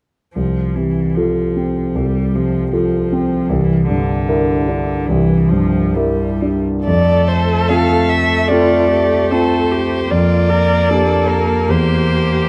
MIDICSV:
0, 0, Header, 1, 5, 480
1, 0, Start_track
1, 0, Key_signature, -1, "major"
1, 0, Tempo, 806452
1, 215, Time_signature, 4, 2, 24, 8
1, 1170, Tempo, 780234
1, 3090, Tempo, 887574
1, 4050, Tempo, 839161
1, 4530, Tempo, 798935
1, 7406, End_track
2, 0, Start_track
2, 0, Title_t, "Violin"
2, 0, Program_c, 0, 40
2, 4047, Note_on_c, 0, 74, 50
2, 4291, Note_on_c, 0, 72, 39
2, 4299, Note_off_c, 0, 74, 0
2, 4525, Note_on_c, 0, 77, 40
2, 4534, Note_off_c, 0, 72, 0
2, 4763, Note_on_c, 0, 76, 45
2, 4772, Note_off_c, 0, 77, 0
2, 4999, Note_on_c, 0, 74, 45
2, 5008, Note_off_c, 0, 76, 0
2, 5493, Note_off_c, 0, 74, 0
2, 5502, Note_on_c, 0, 72, 41
2, 5975, Note_on_c, 0, 74, 51
2, 5984, Note_off_c, 0, 72, 0
2, 6680, Note_on_c, 0, 70, 44
2, 6689, Note_off_c, 0, 74, 0
2, 6930, Note_on_c, 0, 72, 48
2, 6939, Note_off_c, 0, 70, 0
2, 7406, Note_off_c, 0, 72, 0
2, 7406, End_track
3, 0, Start_track
3, 0, Title_t, "Viola"
3, 0, Program_c, 1, 41
3, 4042, Note_on_c, 1, 69, 44
3, 5008, Note_on_c, 1, 65, 33
3, 5017, Note_off_c, 1, 69, 0
3, 5247, Note_off_c, 1, 65, 0
3, 5251, Note_on_c, 1, 67, 33
3, 5496, Note_on_c, 1, 69, 40
3, 5505, Note_off_c, 1, 67, 0
3, 5740, Note_on_c, 1, 67, 36
3, 5749, Note_off_c, 1, 69, 0
3, 5976, Note_on_c, 1, 65, 36
3, 5985, Note_off_c, 1, 67, 0
3, 6207, Note_on_c, 1, 70, 37
3, 6216, Note_off_c, 1, 65, 0
3, 6445, Note_on_c, 1, 69, 41
3, 6454, Note_off_c, 1, 70, 0
3, 6925, Note_on_c, 1, 67, 42
3, 6934, Note_off_c, 1, 69, 0
3, 7406, Note_off_c, 1, 67, 0
3, 7406, End_track
4, 0, Start_track
4, 0, Title_t, "Grand piano"
4, 0, Program_c, 2, 0
4, 213, Note_on_c, 2, 36, 29
4, 324, Control_c, 2, 64, 127
4, 451, Note_on_c, 2, 48, 21
4, 693, Note_on_c, 2, 65, 22
4, 697, Note_on_c, 2, 69, 24
4, 835, Note_off_c, 2, 48, 0
4, 907, Note_off_c, 2, 65, 0
4, 909, Note_off_c, 2, 69, 0
4, 932, Note_on_c, 2, 60, 20
4, 1145, Note_off_c, 2, 36, 0
4, 1161, Note_on_c, 2, 36, 26
4, 1316, Note_off_c, 2, 60, 0
4, 1405, Note_on_c, 2, 48, 22
4, 1639, Note_on_c, 2, 65, 24
4, 1641, Note_on_c, 2, 69, 25
4, 1787, Note_off_c, 2, 48, 0
4, 1853, Note_off_c, 2, 65, 0
4, 1854, Note_off_c, 2, 69, 0
4, 1883, Note_on_c, 2, 60, 27
4, 2086, Note_off_c, 2, 36, 0
4, 2112, Note_on_c, 2, 36, 37
4, 2115, Note_off_c, 2, 60, 0
4, 2126, Control_c, 2, 64, 0
4, 2238, Control_c, 2, 64, 127
4, 2356, Note_on_c, 2, 43, 29
4, 2599, Note_on_c, 2, 64, 30
4, 2599, Note_on_c, 2, 70, 32
4, 2743, Note_off_c, 2, 43, 0
4, 2816, Note_off_c, 2, 64, 0
4, 2816, Note_off_c, 2, 70, 0
4, 2842, Note_on_c, 2, 62, 30
4, 3063, Note_off_c, 2, 36, 0
4, 3093, Note_on_c, 2, 36, 37
4, 3227, Note_off_c, 2, 62, 0
4, 3321, Note_on_c, 2, 43, 31
4, 3563, Note_on_c, 2, 64, 32
4, 3564, Note_on_c, 2, 70, 36
4, 3704, Note_off_c, 2, 43, 0
4, 3787, Note_off_c, 2, 64, 0
4, 3787, Note_off_c, 2, 70, 0
4, 3812, Note_on_c, 2, 62, 26
4, 4029, Note_off_c, 2, 36, 0
4, 4052, Note_off_c, 2, 62, 0
4, 4056, Note_on_c, 2, 41, 33
4, 4059, Control_c, 2, 64, 0
4, 4164, Control_c, 2, 64, 127
4, 4518, Note_off_c, 2, 41, 0
4, 4531, Note_on_c, 2, 60, 25
4, 4531, Note_on_c, 2, 65, 23
4, 4538, Note_on_c, 2, 69, 27
4, 4987, Note_off_c, 2, 60, 0
4, 4987, Note_off_c, 2, 65, 0
4, 4990, Note_off_c, 2, 69, 0
4, 5017, Note_on_c, 2, 60, 27
4, 5018, Note_on_c, 2, 65, 25
4, 5022, Note_on_c, 2, 69, 26
4, 5477, Note_off_c, 2, 60, 0
4, 5478, Note_off_c, 2, 65, 0
4, 5480, Note_off_c, 2, 69, 0
4, 5502, Note_on_c, 2, 60, 25
4, 5503, Note_on_c, 2, 65, 23
4, 5505, Note_on_c, 2, 69, 25
4, 5956, Note_off_c, 2, 60, 0
4, 5957, Note_off_c, 2, 65, 0
4, 5958, Note_off_c, 2, 69, 0
4, 5980, Note_on_c, 2, 41, 37
4, 5989, Control_c, 2, 64, 0
4, 6080, Control_c, 2, 64, 127
4, 6433, Note_off_c, 2, 41, 0
4, 6448, Note_on_c, 2, 58, 27
4, 6454, Note_on_c, 2, 62, 24
4, 6455, Note_on_c, 2, 67, 27
4, 6900, Note_off_c, 2, 58, 0
4, 6903, Note_off_c, 2, 62, 0
4, 6904, Note_off_c, 2, 67, 0
4, 6925, Note_on_c, 2, 40, 31
4, 6934, Control_c, 2, 64, 0
4, 7029, Control_c, 2, 64, 127
4, 7393, Note_off_c, 2, 40, 0
4, 7406, End_track
5, 0, Start_track
5, 0, Title_t, "Cello"
5, 0, Program_c, 3, 42
5, 203, Note_on_c, 3, 53, 28
5, 447, Note_on_c, 3, 52, 28
5, 456, Note_off_c, 3, 53, 0
5, 685, Note_on_c, 3, 53, 26
5, 694, Note_off_c, 3, 52, 0
5, 1164, Note_on_c, 3, 55, 27
5, 1173, Note_off_c, 3, 53, 0
5, 1405, Note_on_c, 3, 53, 30
5, 1414, Note_off_c, 3, 55, 0
5, 1629, Note_off_c, 3, 53, 0
5, 1632, Note_on_c, 3, 53, 30
5, 2108, Note_on_c, 3, 52, 37
5, 2117, Note_off_c, 3, 53, 0
5, 2345, Note_off_c, 3, 52, 0
5, 2348, Note_on_c, 3, 50, 39
5, 3076, Note_on_c, 3, 52, 44
5, 3086, Note_off_c, 3, 50, 0
5, 3306, Note_on_c, 3, 53, 42
5, 3314, Note_off_c, 3, 52, 0
5, 3554, Note_on_c, 3, 55, 40
5, 3562, Note_off_c, 3, 53, 0
5, 3931, Note_off_c, 3, 55, 0
5, 4054, Note_on_c, 3, 57, 33
5, 5957, Note_off_c, 3, 57, 0
5, 5983, Note_on_c, 3, 58, 32
5, 7406, Note_off_c, 3, 58, 0
5, 7406, End_track
0, 0, End_of_file